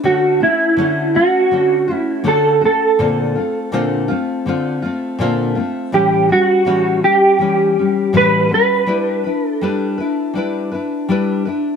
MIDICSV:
0, 0, Header, 1, 3, 480
1, 0, Start_track
1, 0, Key_signature, 2, "major"
1, 0, Tempo, 735294
1, 30, Time_signature, 4, 2, 24, 8
1, 7678, End_track
2, 0, Start_track
2, 0, Title_t, "Clean electric guitar"
2, 0, Program_c, 0, 27
2, 35, Note_on_c, 0, 66, 84
2, 257, Note_off_c, 0, 66, 0
2, 281, Note_on_c, 0, 64, 91
2, 758, Note_on_c, 0, 66, 93
2, 771, Note_off_c, 0, 64, 0
2, 1267, Note_off_c, 0, 66, 0
2, 1267, Note_on_c, 0, 64, 93
2, 1485, Note_off_c, 0, 64, 0
2, 1487, Note_on_c, 0, 69, 107
2, 1704, Note_off_c, 0, 69, 0
2, 1733, Note_on_c, 0, 69, 94
2, 2658, Note_off_c, 0, 69, 0
2, 3879, Note_on_c, 0, 67, 86
2, 4123, Note_off_c, 0, 67, 0
2, 4127, Note_on_c, 0, 66, 97
2, 4595, Note_off_c, 0, 66, 0
2, 4597, Note_on_c, 0, 67, 84
2, 5330, Note_off_c, 0, 67, 0
2, 5333, Note_on_c, 0, 71, 110
2, 5568, Note_off_c, 0, 71, 0
2, 5576, Note_on_c, 0, 71, 101
2, 6196, Note_off_c, 0, 71, 0
2, 6196, Note_on_c, 0, 69, 101
2, 6498, Note_off_c, 0, 69, 0
2, 7678, End_track
3, 0, Start_track
3, 0, Title_t, "Nylon-string guitar"
3, 0, Program_c, 1, 24
3, 23, Note_on_c, 1, 50, 71
3, 23, Note_on_c, 1, 57, 72
3, 28, Note_on_c, 1, 61, 77
3, 33, Note_on_c, 1, 66, 84
3, 254, Note_off_c, 1, 66, 0
3, 262, Note_on_c, 1, 66, 55
3, 266, Note_off_c, 1, 61, 0
3, 267, Note_off_c, 1, 50, 0
3, 267, Note_off_c, 1, 57, 0
3, 274, Note_on_c, 1, 61, 42
3, 286, Note_on_c, 1, 57, 44
3, 500, Note_on_c, 1, 50, 77
3, 504, Note_off_c, 1, 57, 0
3, 504, Note_off_c, 1, 61, 0
3, 507, Note_off_c, 1, 66, 0
3, 512, Note_on_c, 1, 57, 75
3, 512, Note_on_c, 1, 61, 84
3, 520, Note_on_c, 1, 66, 93
3, 741, Note_off_c, 1, 66, 0
3, 746, Note_off_c, 1, 50, 0
3, 749, Note_on_c, 1, 66, 59
3, 752, Note_off_c, 1, 57, 0
3, 752, Note_off_c, 1, 61, 0
3, 763, Note_on_c, 1, 61, 53
3, 774, Note_on_c, 1, 57, 49
3, 986, Note_off_c, 1, 57, 0
3, 986, Note_on_c, 1, 50, 64
3, 990, Note_off_c, 1, 61, 0
3, 991, Note_off_c, 1, 66, 0
3, 994, Note_on_c, 1, 57, 60
3, 998, Note_on_c, 1, 61, 68
3, 1005, Note_on_c, 1, 66, 63
3, 1218, Note_off_c, 1, 66, 0
3, 1226, Note_on_c, 1, 66, 58
3, 1230, Note_off_c, 1, 50, 0
3, 1233, Note_off_c, 1, 57, 0
3, 1234, Note_off_c, 1, 61, 0
3, 1241, Note_on_c, 1, 61, 53
3, 1247, Note_on_c, 1, 57, 49
3, 1457, Note_off_c, 1, 57, 0
3, 1460, Note_on_c, 1, 50, 82
3, 1461, Note_off_c, 1, 61, 0
3, 1465, Note_on_c, 1, 57, 82
3, 1469, Note_on_c, 1, 61, 84
3, 1470, Note_off_c, 1, 66, 0
3, 1478, Note_on_c, 1, 66, 92
3, 1697, Note_off_c, 1, 66, 0
3, 1704, Note_on_c, 1, 66, 61
3, 1707, Note_off_c, 1, 50, 0
3, 1709, Note_off_c, 1, 57, 0
3, 1709, Note_off_c, 1, 61, 0
3, 1717, Note_on_c, 1, 61, 43
3, 1726, Note_on_c, 1, 57, 45
3, 1949, Note_off_c, 1, 57, 0
3, 1949, Note_off_c, 1, 66, 0
3, 1951, Note_on_c, 1, 46, 73
3, 1952, Note_on_c, 1, 50, 77
3, 1955, Note_off_c, 1, 61, 0
3, 1957, Note_on_c, 1, 57, 81
3, 1959, Note_on_c, 1, 60, 81
3, 1964, Note_on_c, 1, 65, 81
3, 2182, Note_off_c, 1, 65, 0
3, 2190, Note_on_c, 1, 65, 58
3, 2192, Note_off_c, 1, 60, 0
3, 2193, Note_off_c, 1, 46, 0
3, 2193, Note_off_c, 1, 50, 0
3, 2195, Note_off_c, 1, 57, 0
3, 2199, Note_on_c, 1, 60, 48
3, 2212, Note_on_c, 1, 57, 42
3, 2427, Note_on_c, 1, 46, 85
3, 2428, Note_off_c, 1, 57, 0
3, 2430, Note_off_c, 1, 60, 0
3, 2431, Note_on_c, 1, 50, 90
3, 2432, Note_off_c, 1, 65, 0
3, 2436, Note_on_c, 1, 57, 80
3, 2438, Note_on_c, 1, 60, 104
3, 2440, Note_on_c, 1, 65, 98
3, 2656, Note_off_c, 1, 65, 0
3, 2664, Note_on_c, 1, 65, 73
3, 2670, Note_off_c, 1, 60, 0
3, 2671, Note_off_c, 1, 46, 0
3, 2672, Note_off_c, 1, 50, 0
3, 2675, Note_off_c, 1, 57, 0
3, 2677, Note_on_c, 1, 60, 60
3, 2685, Note_on_c, 1, 57, 58
3, 2908, Note_off_c, 1, 57, 0
3, 2909, Note_off_c, 1, 65, 0
3, 2910, Note_on_c, 1, 50, 73
3, 2916, Note_off_c, 1, 60, 0
3, 2916, Note_on_c, 1, 57, 74
3, 2923, Note_on_c, 1, 60, 71
3, 2929, Note_on_c, 1, 65, 89
3, 3140, Note_off_c, 1, 65, 0
3, 3148, Note_on_c, 1, 65, 66
3, 3152, Note_off_c, 1, 50, 0
3, 3155, Note_off_c, 1, 57, 0
3, 3155, Note_off_c, 1, 60, 0
3, 3163, Note_on_c, 1, 60, 63
3, 3170, Note_on_c, 1, 57, 54
3, 3385, Note_on_c, 1, 46, 89
3, 3391, Note_off_c, 1, 57, 0
3, 3391, Note_off_c, 1, 65, 0
3, 3394, Note_off_c, 1, 60, 0
3, 3394, Note_on_c, 1, 50, 86
3, 3399, Note_on_c, 1, 57, 98
3, 3401, Note_on_c, 1, 60, 99
3, 3404, Note_on_c, 1, 65, 101
3, 3616, Note_off_c, 1, 65, 0
3, 3624, Note_on_c, 1, 65, 62
3, 3629, Note_off_c, 1, 60, 0
3, 3630, Note_off_c, 1, 46, 0
3, 3634, Note_off_c, 1, 50, 0
3, 3637, Note_off_c, 1, 57, 0
3, 3637, Note_on_c, 1, 60, 59
3, 3652, Note_on_c, 1, 57, 51
3, 3866, Note_on_c, 1, 45, 85
3, 3869, Note_off_c, 1, 65, 0
3, 3870, Note_on_c, 1, 52, 79
3, 3873, Note_off_c, 1, 57, 0
3, 3876, Note_off_c, 1, 60, 0
3, 3876, Note_on_c, 1, 55, 79
3, 3882, Note_on_c, 1, 61, 80
3, 4105, Note_on_c, 1, 66, 56
3, 4110, Note_off_c, 1, 45, 0
3, 4112, Note_off_c, 1, 52, 0
3, 4113, Note_off_c, 1, 61, 0
3, 4115, Note_off_c, 1, 55, 0
3, 4120, Note_on_c, 1, 61, 51
3, 4130, Note_on_c, 1, 55, 44
3, 4341, Note_on_c, 1, 45, 75
3, 4343, Note_off_c, 1, 55, 0
3, 4345, Note_off_c, 1, 61, 0
3, 4346, Note_on_c, 1, 52, 78
3, 4349, Note_off_c, 1, 66, 0
3, 4350, Note_on_c, 1, 55, 87
3, 4353, Note_on_c, 1, 61, 92
3, 4356, Note_on_c, 1, 66, 83
3, 4586, Note_off_c, 1, 61, 0
3, 4587, Note_off_c, 1, 45, 0
3, 4590, Note_off_c, 1, 52, 0
3, 4592, Note_off_c, 1, 55, 0
3, 4593, Note_on_c, 1, 61, 54
3, 4595, Note_off_c, 1, 66, 0
3, 4606, Note_on_c, 1, 55, 46
3, 4823, Note_on_c, 1, 52, 64
3, 4829, Note_off_c, 1, 55, 0
3, 4834, Note_off_c, 1, 61, 0
3, 4837, Note_on_c, 1, 55, 72
3, 4841, Note_on_c, 1, 61, 72
3, 5068, Note_off_c, 1, 52, 0
3, 5075, Note_off_c, 1, 55, 0
3, 5077, Note_off_c, 1, 61, 0
3, 5086, Note_on_c, 1, 61, 53
3, 5099, Note_on_c, 1, 55, 49
3, 5305, Note_off_c, 1, 55, 0
3, 5307, Note_on_c, 1, 45, 85
3, 5309, Note_off_c, 1, 61, 0
3, 5312, Note_on_c, 1, 52, 83
3, 5313, Note_on_c, 1, 55, 83
3, 5317, Note_on_c, 1, 61, 85
3, 5319, Note_on_c, 1, 66, 91
3, 5533, Note_off_c, 1, 66, 0
3, 5541, Note_on_c, 1, 66, 61
3, 5550, Note_off_c, 1, 45, 0
3, 5550, Note_off_c, 1, 61, 0
3, 5553, Note_off_c, 1, 52, 0
3, 5553, Note_off_c, 1, 55, 0
3, 5558, Note_on_c, 1, 61, 48
3, 5566, Note_on_c, 1, 55, 48
3, 5779, Note_off_c, 1, 55, 0
3, 5787, Note_off_c, 1, 66, 0
3, 5787, Note_on_c, 1, 55, 81
3, 5791, Note_on_c, 1, 62, 72
3, 5794, Note_off_c, 1, 61, 0
3, 5797, Note_on_c, 1, 64, 84
3, 5802, Note_on_c, 1, 71, 88
3, 6023, Note_off_c, 1, 71, 0
3, 6030, Note_off_c, 1, 55, 0
3, 6031, Note_on_c, 1, 71, 57
3, 6032, Note_off_c, 1, 62, 0
3, 6035, Note_off_c, 1, 64, 0
3, 6046, Note_on_c, 1, 64, 50
3, 6050, Note_on_c, 1, 62, 46
3, 6272, Note_off_c, 1, 71, 0
3, 6276, Note_off_c, 1, 62, 0
3, 6276, Note_on_c, 1, 55, 79
3, 6278, Note_off_c, 1, 64, 0
3, 6283, Note_on_c, 1, 62, 95
3, 6286, Note_on_c, 1, 64, 91
3, 6291, Note_on_c, 1, 71, 86
3, 6506, Note_off_c, 1, 71, 0
3, 6514, Note_off_c, 1, 55, 0
3, 6514, Note_on_c, 1, 71, 61
3, 6518, Note_off_c, 1, 62, 0
3, 6520, Note_off_c, 1, 64, 0
3, 6530, Note_on_c, 1, 64, 67
3, 6539, Note_on_c, 1, 62, 50
3, 6747, Note_on_c, 1, 55, 66
3, 6751, Note_off_c, 1, 62, 0
3, 6753, Note_off_c, 1, 71, 0
3, 6759, Note_on_c, 1, 62, 71
3, 6760, Note_off_c, 1, 64, 0
3, 6768, Note_on_c, 1, 64, 74
3, 6771, Note_on_c, 1, 71, 79
3, 6987, Note_off_c, 1, 71, 0
3, 6990, Note_off_c, 1, 55, 0
3, 6992, Note_off_c, 1, 64, 0
3, 6995, Note_on_c, 1, 71, 60
3, 6996, Note_off_c, 1, 62, 0
3, 7000, Note_on_c, 1, 64, 60
3, 7015, Note_on_c, 1, 62, 54
3, 7234, Note_off_c, 1, 71, 0
3, 7236, Note_off_c, 1, 64, 0
3, 7237, Note_off_c, 1, 62, 0
3, 7237, Note_on_c, 1, 55, 88
3, 7245, Note_on_c, 1, 62, 89
3, 7249, Note_on_c, 1, 64, 98
3, 7256, Note_on_c, 1, 71, 102
3, 7468, Note_off_c, 1, 71, 0
3, 7475, Note_off_c, 1, 55, 0
3, 7476, Note_on_c, 1, 71, 64
3, 7478, Note_off_c, 1, 62, 0
3, 7481, Note_off_c, 1, 64, 0
3, 7488, Note_on_c, 1, 64, 54
3, 7496, Note_on_c, 1, 62, 49
3, 7678, Note_off_c, 1, 62, 0
3, 7678, Note_off_c, 1, 64, 0
3, 7678, Note_off_c, 1, 71, 0
3, 7678, End_track
0, 0, End_of_file